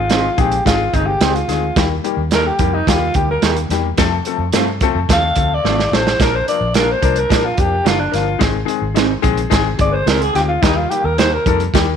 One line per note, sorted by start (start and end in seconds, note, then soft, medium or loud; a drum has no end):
0.00 0.28 G#1 medium
0.00 0.42 F4 medium
0.10 0.25 D#3 medium
0.10 0.25 G#3 medium
0.10 0.25 C4 medium
0.10 0.23 C4 medium
0.10 0.23 D#4 medium
0.10 0.26 G#4 medium
0.10 0.24 G#4 medium
0.10 0.24 C5 medium
0.10 snare loud
0.10 closed hi-hat medium
0.38 0.60 A#1 medium
0.38 0.53 D#3 medium
0.38 0.53 G#3 medium
0.38 0.53 C4 medium
0.38 0.66 G4 medium
0.38 0.53 G#4 loud
0.38 kick medium
0.38 closed hi-hat medium
0.52 closed hi-hat soft
0.65 0.87 G#1 medium
0.65 0.80 D#3 medium
0.65 0.81 G#3 medium
0.65 0.81 C4 medium
0.65 0.95 F4 medium
0.65 0.81 G#4 medium
0.65 kick medium
0.65 snare loud
0.65 closed hi-hat medium
0.93 1.15 G1 medium
0.93 1.08 D#3 medium
0.93 1.09 G#3 medium
0.93 1.09 C4 medium
0.93 1.08 D#4 medium
0.93 1.09 G#4 medium
0.93 kick medium
0.93 closed hi-hat medium
1.06 1.37 G4 medium
1.20 1.42 C#2 medium
1.20 1.36 D#3 medium
1.20 1.36 G#3 medium
1.20 1.34 C4 medium
1.20 1.36 C4 medium
1.20 1.34 D#4 medium
1.20 1.36 G#4 medium
1.20 1.34 G#4 medium
1.20 1.35 C5 medium
1.20 snare loud
1.20 closed hi-hat medium
1.35 1.90 F4 medium
1.35 closed hi-hat soft
1.48 1.70 D2 medium
1.48 1.63 D#3 medium
1.48 1.63 G#3 medium
1.48 1.64 C4 medium
1.48 1.64 G#4 medium
1.48 snare soft
1.48 closed hi-hat medium
1.76 1.98 D#2 medium
1.76 1.92 D#3 medium
1.76 1.92 G3 medium
1.76 1.92 A#3 medium
1.76 1.92 G4 loud
1.76 kick loud
1.76 snare loud
1.76 closed hi-hat medium
2.04 2.19 D#3 medium
2.04 2.19 G3 medium
2.04 2.19 A#3 medium
2.04 2.19 G4 medium
2.04 closed hi-hat medium
2.17 2.49 D#2 medium
2.31 2.47 D#3 medium
2.31 2.47 G3 medium
2.31 2.45 A#3 medium
2.31 2.47 A#3 medium
2.31 2.45 D#4 medium
2.31 2.45 G4 medium
2.31 2.48 A4 medium
2.31 2.45 A#4 medium
2.31 2.48 A#4 loud
2.31 snare medium
2.31 closed hi-hat medium
2.47 2.76 G4 medium
2.59 2.81 F2 medium
2.59 2.74 D#3 medium
2.59 2.74 G3 medium
2.59 2.75 A#3 medium
2.59 2.75 G4 loud
2.59 kick medium
2.59 closed hi-hat medium
2.74 2.90 D#4 medium
2.87 3.09 D#2 medium
2.87 3.02 D#3 medium
2.87 3.02 G3 medium
2.87 3.02 A#3 medium
2.87 3.17 F4 medium
2.87 3.02 G4 loud
2.87 kick medium
2.87 snare loud
2.87 closed hi-hat medium
3.14 3.36 D2 medium
3.14 3.30 D#3 medium
3.14 3.30 G3 medium
3.14 3.30 A#3 medium
3.14 3.29 G4 medium
3.14 3.30 G4 medium
3.14 kick medium
3.14 closed hi-hat medium
3.31 3.56 A#4 medium
3.42 3.64 D#2 medium
3.42 3.58 D#3 medium
3.42 3.58 G3 medium
3.42 3.55 A#3 medium
3.42 3.58 A#3 medium
3.42 3.55 D#4 medium
3.42 3.55 G4 medium
3.42 3.58 G4 medium
3.42 3.56 A#4 medium
3.42 snare loud
3.42 closed hi-hat medium
3.56 closed hi-hat soft
3.69 3.91 E2 medium
3.69 3.85 D#3 medium
3.69 3.86 G3 medium
3.69 3.85 A#3 medium
3.69 3.86 G4 medium
3.69 snare soft
3.69 closed hi-hat medium
3.98 4.19 F2 medium
3.98 4.13 F3 loud
3.98 4.13 A3 loud
3.98 4.13 C4 loud
3.98 4.13 A4 loud
3.98 kick loud
3.98 snare loud
3.98 closed hi-hat medium
4.25 4.41 F3 medium
4.25 4.41 A3 medium
4.25 4.41 C4 medium
4.25 4.41 A4 medium
4.25 closed hi-hat medium
4.38 4.50 F2 medium
4.53 4.68 F3 medium
4.53 4.68 A3 medium
4.53 4.66 A3 medium
4.53 4.68 C4 medium
4.53 4.66 C4 medium
4.53 4.67 F4 medium
4.53 4.68 A4 medium
4.53 4.67 A4 medium
4.53 snare medium
4.53 closed hi-hat medium
4.81 4.97 F3 loud
4.81 4.96 A3 loud
4.81 4.97 C4 loud
4.81 4.97 A4 loud
4.81 kick medium
4.81 closed hi-hat medium
4.95 5.06 F2 medium
5.09 5.30 D#2 medium
5.09 5.24 F3 medium
5.09 5.24 A3 medium
5.09 5.24 C4 medium
5.09 5.24 A4 loud
5.09 kick medium
5.09 snare loud
5.09 closed hi-hat medium
5.13 5.56 F5 loud
5.36 5.58 D2 medium
5.36 5.51 F3 medium
5.36 5.52 A3 medium
5.36 5.52 C4 medium
5.36 5.52 A4 medium
5.36 kick medium
5.36 closed hi-hat medium
5.54 5.96 D5 loud
5.64 5.86 G#1 medium
5.64 5.79 F3 medium
5.64 5.79 A3 medium
5.64 5.77 A3 medium
5.64 5.79 C4 medium
5.64 5.77 C4 medium
5.64 5.78 F4 medium
5.64 5.79 A4 medium
5.64 5.78 A4 medium
5.64 snare medium
5.79 snare medium
5.92 6.13 A1 medium
5.92 6.07 F3 medium
5.92 6.07 A3 medium
5.92 6.07 C4 medium
5.92 6.07 A4 medium
5.92 6.24 C5 medium
5.92 snare medium
6.07 snare medium
6.19 6.41 A#1 loud
6.19 6.34 F3 medium
6.19 6.35 A#3 medium
6.19 6.35 D4 medium
6.19 6.35 A#4 loud
6.19 6.37 A#4 loud
6.19 kick loud
6.19 snare loud
6.19 closed hi-hat medium
6.35 6.48 C5 medium
6.47 6.62 F3 medium
6.47 6.62 A#3 medium
6.47 6.62 D4 medium
6.47 6.63 A#4 medium
6.47 6.74 D5 medium
6.47 closed hi-hat medium
6.61 6.93 A#1 medium
6.74 6.89 F3 medium
6.74 6.87 A#3 medium
6.74 6.90 A#3 medium
6.74 6.90 D4 medium
6.74 6.88 D4 medium
6.74 6.88 F4 medium
6.74 6.90 A#4 medium
6.74 6.93 A#4 medium
6.74 6.88 A#4 medium
6.74 snare loud
6.74 closed hi-hat medium
6.92 7.20 C5 medium
7.02 7.24 C2 medium
7.02 7.17 F3 medium
7.02 7.17 A#3 medium
7.02 7.17 D4 medium
7.02 7.18 A#4 loud
7.02 kick medium
7.02 closed hi-hat medium
7.16 7.47 A#4 medium
7.16 closed hi-hat soft
7.29 7.52 A#2 medium
7.29 7.45 F3 medium
7.29 7.45 A#3 medium
7.29 7.45 D4 medium
7.29 7.45 A#4 loud
7.29 kick medium
7.29 snare loud
7.29 closed hi-hat medium
7.45 7.61 F4 medium
7.57 7.80 F2 medium
7.57 7.73 F3 medium
7.57 7.73 A#3 medium
7.57 7.73 D4 medium
7.57 7.73 G4 medium
7.57 7.88 G4 medium
7.57 kick medium
7.57 closed hi-hat medium
7.84 8.07 F#1 medium
7.84 8.00 F3 medium
7.84 8.00 A#3 medium
7.84 7.98 A#3 medium
7.84 8.00 D4 medium
7.84 7.99 D4 medium
7.84 7.99 F4 medium
7.84 8.01 F4 medium
7.84 8.00 A#4 medium
7.84 7.99 A#4 medium
7.84 snare loud
7.84 closed hi-hat medium
8.00 8.16 D4 medium
8.11 8.35 G1 medium
8.11 8.27 F3 medium
8.11 8.27 A#3 medium
8.11 8.27 D4 medium
8.11 8.42 F4 medium
8.11 8.27 A#4 medium
8.11 closed hi-hat medium
8.15 snare soft
8.39 8.62 G#1 loud
8.39 8.55 D#3 medium
8.39 8.55 G#3 medium
8.39 8.55 C4 medium
8.39 8.55 G#4 loud
8.39 kick loud
8.39 snare loud
8.39 closed hi-hat medium
8.65 8.82 D#3 medium
8.65 8.82 G#3 medium
8.65 8.82 C4 medium
8.65 8.82 G#4 medium
8.65 closed hi-hat medium
8.81 9.14 G#1 medium
8.94 9.10 D#3 medium
8.94 9.10 G#3 medium
8.94 9.11 C4 medium
8.94 9.09 C4 medium
8.94 9.11 D#4 medium
8.94 9.09 D#4 medium
8.94 9.10 G#4 medium
8.94 9.10 C5 medium
8.94 snare loud
8.94 closed hi-hat medium
9.22 9.46 A#1 medium
9.22 9.38 D#3 loud
9.22 9.38 G#3 loud
9.22 9.38 C4 loud
9.22 9.38 G#4 loud
9.22 kick medium
9.22 closed hi-hat medium
9.37 closed hi-hat medium
9.50 9.73 G#1 loud
9.50 9.66 D#3 loud
9.50 9.66 G#3 loud
9.50 9.66 C4 loud
9.50 9.66 G#4 loud
9.50 kick medium
9.50 snare loud
9.50 closed hi-hat medium
9.78 10.01 G1 medium
9.78 9.94 D#3 medium
9.78 9.94 G#3 medium
9.78 9.94 C4 medium
9.78 9.94 G#4 medium
9.78 9.93 D5 loud
9.78 kick medium
9.78 closed hi-hat medium
9.91 9.95 B4 medium
9.91 10.09 C5 medium
10.06 10.28 C#2 medium
10.06 10.22 D#3 medium
10.06 10.22 G#3 medium
10.06 10.22 C4 medium
10.06 10.20 C4 medium
10.06 10.20 D#4 medium
10.06 10.22 G#4 medium
10.06 10.21 G#4 medium
10.06 10.23 A#4 loud
10.06 10.21 C5 loud
10.06 snare loud
10.06 closed hi-hat medium
10.22 10.35 G#4 medium
10.22 closed hi-hat medium
10.34 10.56 D2 medium
10.34 10.49 D#3 medium
10.34 10.50 G#3 medium
10.34 10.50 C4 medium
10.34 10.50 F4 medium
10.34 10.42 G4 medium
10.34 snare soft
10.34 closed hi-hat medium
10.49 10.63 F4 medium
10.62 10.84 D#2 loud
10.62 10.77 D#3 medium
10.62 10.78 G3 medium
10.62 10.78 A#3 medium
10.62 10.78 D#4 loud
10.62 10.78 G4 loud
10.62 kick loud
10.62 snare loud
10.62 closed hi-hat medium
10.76 10.91 F4 medium
10.90 11.05 D#3 medium
10.90 11.05 G3 medium
10.90 11.06 A#3 medium
10.90 11.07 G4 medium
10.90 11.06 G4 medium
10.90 closed hi-hat medium
11.04 11.37 D#2 loud
11.04 11.18 A#4 medium
11.18 11.33 D#3 medium
11.18 11.33 G3 medium
11.18 11.31 A#3 medium
11.18 11.33 A#3 medium
11.18 11.31 D#4 medium
11.18 11.34 G4 medium
11.18 11.32 G4 loud
11.18 11.32 A#4 medium
11.18 11.35 C5 medium
11.18 snare loud
11.18 closed hi-hat medium
11.34 11.61 A#4 medium
11.46 11.68 F2 loud
11.46 11.61 D#3 loud
11.46 11.61 G3 medium
11.46 11.62 A#3 medium
11.46 11.62 A4 loud
11.46 kick medium
11.46 closed hi-hat medium
11.60 closed hi-hat medium
11.74 11.95 D#2 loud
11.74 11.89 D#3 loud
11.74 11.89 G3 loud
11.74 11.89 A#3 loud
11.74 11.89 G4 loud
11.74 kick medium
11.74 snare loud
11.74 closed hi-hat medium